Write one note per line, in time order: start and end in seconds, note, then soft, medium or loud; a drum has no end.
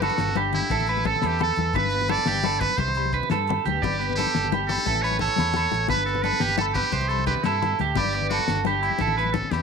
0.00 0.18 G2 medium
0.00 0.09 B3 medium
0.00 0.37 F#4 medium
0.00 0.35 A4 medium
0.00 closed hi-hat soft
0.00 muted conga medium
0.00 low conga soft
0.00 low agogo medium
0.09 0.36 D4 soft
0.09 high conga medium
0.18 0.60 G1 medium
0.18 0.69 G2 medium
0.18 snare medium
0.18 closed hi-hat medium
0.28 low conga medium
0.35 0.70 D4 medium
0.35 0.70 G4 medium
0.35 closed hi-hat soft
0.35 muted conga loud
0.35 high conga medium
0.35 low conga soft
0.35 low agogo medium
0.53 0.71 D3 medium
0.53 1.08 E4 medium
0.53 snare soft
0.53 closed hi-hat soft
0.53 low conga medium
0.53 low agogo medium
0.62 high conga medium
0.69 1.12 A1 loud
0.69 1.23 A2 medium
0.69 0.88 A4 medium
0.69 kick medium
0.69 closed hi-hat medium
0.69 muted conga medium
0.69 low conga soft
0.80 low conga medium
0.87 1.74 A3 medium
0.87 1.06 B4 medium
0.87 closed hi-hat soft
0.87 low agogo medium
0.97 high conga medium
1.04 1.41 C#4 medium
1.04 1.39 A4 medium
1.04 1.28 A4 medium
1.04 kick medium
1.04 closed hi-hat soft
1.04 muted conga medium
1.04 low conga soft
1.16 low conga medium
1.22 1.74 E2 medium
1.22 1.51 E2 medium
1.22 snare medium
1.22 closed hi-hat medium
1.22 high conga medium
1.22 low conga soft
1.22 low agogo medium
1.26 1.42 G4 medium
1.39 1.74 A4 medium
1.39 closed hi-hat soft
1.39 muted conga medium
1.39 low conga medium
1.39 low agogo medium
1.43 1.74 A4 medium
1.56 1.71 E2 medium
1.56 1.73 E3 medium
1.56 closed hi-hat soft
1.56 high conga medium
1.73 2.15 G1 medium
1.73 2.25 G2 medium
1.73 2.08 B4 medium
1.73 kick medium
1.73 closed hi-hat medium
1.73 muted conga medium
1.73 low conga medium
1.73 low agogo medium
1.78 2.12 B4 loud
1.85 high conga medium
1.90 2.78 B3 medium
1.90 closed hi-hat soft
2.01 low conga medium
2.08 2.78 D4 medium
2.08 2.26 A4 medium
2.08 2.62 D5 loud
2.08 closed hi-hat soft
2.08 muted conga medium
2.08 low conga soft
2.08 low agogo medium
2.18 high conga medium
2.26 2.67 G1 medium
2.26 2.44 G2 medium
2.26 2.44 G4 medium
2.26 snare medium
2.26 closed hi-hat medium
2.35 low conga medium
2.43 2.61 A2 medium
2.43 2.61 A4 medium
2.43 closed hi-hat soft
2.43 muted conga medium
2.43 high conga medium
2.43 low conga soft
2.43 low agogo medium
2.60 2.79 B4 loud
2.60 2.78 B4 medium
2.60 kick medium
2.60 closed hi-hat medium
2.60 low conga medium
2.60 low agogo medium
2.70 high conga medium
2.76 3.19 C2 loud
2.76 3.30 C3 medium
2.76 3.17 C5 medium
2.76 3.12 C5 medium
2.76 kick medium
2.76 closed hi-hat medium
2.76 muted conga medium
2.76 low conga soft
2.88 low conga medium
2.95 4.00 G3 medium
2.95 closed hi-hat soft
2.95 low agogo medium
3.05 high conga medium
3.13 3.47 D4 medium
3.13 3.30 B4 medium
3.13 kick medium
3.13 closed hi-hat soft
3.13 low conga soft
3.23 low conga medium
3.29 3.80 G2 medium
3.29 3.58 G2 medium
3.29 3.64 A4 medium
3.29 snare medium
3.29 closed hi-hat medium
3.29 high conga loud
3.29 low conga soft
3.29 low agogo medium
3.47 3.81 D4 medium
3.47 closed hi-hat soft
3.47 muted conga medium
3.47 low conga medium
3.47 low agogo medium
3.65 3.79 D2 medium
3.65 3.81 E3 medium
3.65 3.82 G4 medium
3.65 closed hi-hat medium
3.65 high conga loud
3.76 low conga soft
3.82 4.24 G1 medium
3.82 4.34 G2 medium
3.82 4.15 G4 loud
3.82 3.99 D5 medium
3.82 kick medium
3.82 closed hi-hat medium
3.82 muted conga loud
3.82 low conga loud
3.82 low agogo medium
3.93 high conga medium
3.99 4.84 B3 medium
3.99 4.16 B4 medium
3.99 closed hi-hat soft
4.10 low conga medium
4.15 4.52 D4 medium
4.15 4.48 G4 loud
4.15 4.50 A4 medium
4.15 closed hi-hat soft
4.15 muted conga medium
4.15 low conga soft
4.19 low agogo medium
4.27 high conga medium
4.35 4.76 G1 medium
4.35 4.85 G2 medium
4.35 snare medium
4.35 closed hi-hat medium
4.44 low conga medium
4.52 4.85 D4 medium
4.52 4.85 G4 medium
4.52 closed hi-hat soft
4.52 muted conga medium
4.52 high conga medium
4.52 low conga soft
4.52 low agogo medium
4.68 4.86 D3 medium
4.68 5.04 A4 loud
4.68 snare soft
4.68 closed hi-hat soft
4.68 low conga medium
4.68 low agogo medium
4.78 high conga medium
4.86 5.27 A1 medium
4.86 5.37 A2 medium
4.86 5.88 E3 medium
4.86 5.03 A3 medium
4.86 5.22 C#4 medium
4.86 5.91 E4 medium
4.86 5.03 A4 medium
4.86 kick medium
4.86 closed hi-hat medium
4.86 muted conga medium
4.86 low conga soft
4.94 low conga medium
5.02 5.88 A3 medium
5.02 5.20 B4 medium
5.02 5.19 C#5 medium
5.02 closed hi-hat soft
5.02 low agogo medium
5.12 high conga medium
5.19 5.54 A4 medium
5.19 5.86 C#5 medium
5.19 kick medium
5.19 closed hi-hat soft
5.19 muted conga medium
5.19 low conga soft
5.28 low conga medium
5.36 5.65 E2 medium
5.36 5.54 C#3 medium
5.36 snare medium
5.36 closed hi-hat medium
5.36 high conga medium
5.36 low conga soft
5.36 low agogo medium
5.54 5.72 B2 medium
5.54 5.89 A4 medium
5.54 closed hi-hat medium
5.54 muted conga medium
5.54 low conga medium
5.54 low agogo medium
5.72 5.86 A1 medium
5.72 5.90 A2 medium
5.72 closed hi-hat soft
5.72 high conga medium
5.80 low conga soft
5.88 6.30 G1 medium
5.88 6.39 G2 medium
5.88 6.23 B4 medium
5.88 6.05 B4 loud
5.88 kick medium
5.88 closed hi-hat medium
5.88 muted conga medium
5.88 low conga medium
5.88 low agogo medium
5.96 high conga medium
6.05 6.91 B3 medium
6.05 6.24 A4 medium
6.05 closed hi-hat soft
6.15 low conga medium
6.23 6.91 D4 medium
6.23 6.41 A4 medium
6.23 6.57 B4 loud
6.23 closed hi-hat soft
6.23 muted conga medium
6.23 low conga soft
6.23 low agogo medium
6.32 high conga medium
6.40 6.82 G1 medium
6.40 6.58 G2 medium
6.40 6.58 G4 medium
6.40 snare medium
6.40 closed hi-hat medium
6.49 low conga medium
6.56 6.75 A2 medium
6.56 6.66 A4 medium
6.56 6.75 A4 medium
6.56 closed hi-hat soft
6.56 muted conga medium
6.56 high conga medium
6.61 low agogo medium
6.74 6.92 B2 medium
6.74 7.10 G4 loud
6.74 6.92 B4 medium
6.74 kick medium
6.74 snare soft
6.74 closed hi-hat soft
6.74 low conga medium
6.74 low agogo medium
6.83 high conga medium
6.92 7.33 C2 loud
6.92 7.43 C3 medium
6.92 7.26 C5 medium
6.92 kick medium
6.92 closed hi-hat medium
6.92 muted conga medium
7.01 low conga medium
7.08 8.14 G3 medium
7.08 7.26 A4 medium
7.08 closed hi-hat soft
7.08 low agogo medium
7.18 high conga medium
7.18 low conga soft
7.26 7.95 D4 medium
7.26 7.35 G4 medium
7.26 7.44 B4 medium
7.26 kick medium
7.26 closed hi-hat soft
7.26 muted conga medium
7.36 low conga medium
7.43 7.73 G2 medium
7.43 7.61 C3 medium
7.43 7.80 E4 medium
7.43 7.78 A4 medium
7.43 snare medium
7.43 closed hi-hat medium
7.43 high conga medium
7.43 low conga soft
7.43 low agogo medium
7.62 7.79 B2 soft
7.62 closed hi-hat soft
7.62 muted conga medium
7.62 low conga medium
7.62 low agogo medium
7.79 7.93 D2 medium
7.79 7.97 A2 medium
7.79 7.97 G4 medium
7.79 closed hi-hat soft
7.79 high conga medium
7.79 low conga soft
7.96 8.37 G1 medium
7.96 8.47 G2 medium
7.96 8.29 G4 medium
7.96 8.14 D5 medium
7.96 kick medium
7.96 closed hi-hat medium
7.96 muted conga medium
7.96 low conga medium
7.96 low agogo medium
8.04 high conga medium
8.13 8.99 B3 medium
8.13 8.31 D5 medium
8.13 closed hi-hat soft
8.21 low conga medium
8.30 8.66 D4 medium
8.30 8.63 F#4 medium
8.30 8.65 A4 medium
8.30 closed hi-hat soft
8.30 muted conga medium
8.30 low conga soft
8.30 low agogo medium
8.39 high conga medium
8.48 8.89 G1 medium
8.48 8.98 G2 medium
8.48 snare medium
8.48 closed hi-hat medium
8.56 low conga medium
8.65 8.99 D4 medium
8.65 8.99 G4 medium
8.65 closed hi-hat soft
8.65 muted conga medium
8.65 high conga medium
8.65 low conga soft
8.65 low agogo medium
8.82 9.31 E4 medium
8.82 closed hi-hat soft
8.82 low agogo medium
8.90 high conga medium
8.99 9.41 A1 loud
8.99 9.53 A2 medium
8.99 9.17 A4 medium
8.99 kick medium
8.99 closed hi-hat medium
8.99 muted conga medium
8.99 low conga soft
9.07 low conga medium
9.18 9.62 A3 medium
9.18 9.34 B4 medium
9.18 closed hi-hat soft
9.18 low agogo medium
9.25 high conga medium
9.32 9.62 C#4 medium
9.32 9.52 A4 medium
9.32 muted clean electric guitar stroke medium
9.32 kick medium
9.32 closed hi-hat soft
9.32 muted conga medium
9.32 low conga soft
9.43 low conga medium
9.51 9.62 E2 medium
9.51 9.62 G4 medium
9.51 snare medium
9.51 closed hi-hat medium
9.51 high conga medium
9.51 low conga soft
9.51 low agogo medium